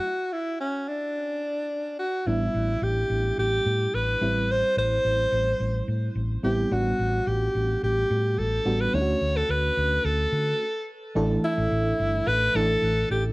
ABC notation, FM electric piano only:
X:1
M:4/4
L:1/8
Q:1/4=108
K:D
V:1 name="FM electric piano"
z8 | [G,B,DE]3 z4 [G,=CE]- | [G,=CE]2 z4 z [G,B,CE] | [G,B,DF]3 z4 [G,B,DF] |
[A,CDEF]3 z4 z | [E,A,DEA]3 z2 [E,A,DEA]2 z |]